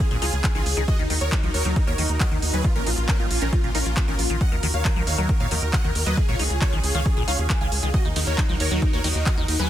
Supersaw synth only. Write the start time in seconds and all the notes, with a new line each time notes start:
0.11 G#4
0.22 F4 G#4
0.33 G#4
0.44 G#4
0.55 F4 G#4
0.66 G#4
0.77 G#4
0.88 F#4 D#5
0.99 D#4
1.10 D#4
1.21 A#4 C#5
1.32 D#4
1.43 D#4
1.54 A#4 C#5
1.65 D#4
1.76 D#4
1.87 A#4 C#5
1.98 D#4
2.09 D#4
2.20 F#4 D#5
2.31 D#4
2.42 D#4
2.53 G#4 B4
2.64 F4
2.75 C#4 A#4
2.86 F4
2.97 F4
3.08 C#4 A#4
3.19 F4
3.31 F4
3.41 C#4 A#4
3.53 F4
3.64 F4
3.75 C#4 A#4
3.86 F4
3.97 F4
4.08 C#4 A#4
4.19 F4
4.30 F4
4.41 D#5 F#5
4.52 A#4
4.63 A#4
4.74 C#5 F5
4.85 A#4
4.96 A#4
5.07 C#5 F5
5.18 A#4
5.29 A#4
5.40 C#5 F5
5.51 A#4
5.62 A#4
5.73 D#5 F#5
5.84 A#4
5.95 A#4
6.06 B4 D#5
6.17 G#4
6.28 F4 C#5
6.39 G#4
6.51 G#4
6.62 F4 C#5
6.73 G#4
6.84 G#4
6.95 C#5 F5
7.06 G#4
7.17 G#4
7.28 C#5 F5
7.39 G#4
7.50 G#4
7.61 F5 G#5
7.72 G#4
7.83 G#4
7.94 F#4 D#5
8.05 D#4
8.16 D#4
8.27 A#4 C#5
8.38 D#4
8.49 D#4
8.60 A#4 C#5
8.71 D#4
8.82 D#4
8.93 A#4 C#5
9.04 D#4
9.15 D#4
9.27 F#4 D#5
9.38 D#4
9.49 D#4
9.60 G#4 B4